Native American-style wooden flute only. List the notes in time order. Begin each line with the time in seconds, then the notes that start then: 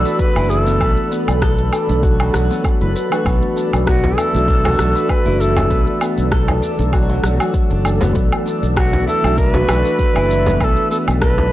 Already playing: A4
0.19 B4
0.50 G#4
0.62 A4
3.87 F#4
4.17 A4
5.10 B4
5.40 A4
8.77 F#4
9.08 A4
9.38 A#4
9.53 B4
10.61 A4 B4
10.91 A4
11.21 B4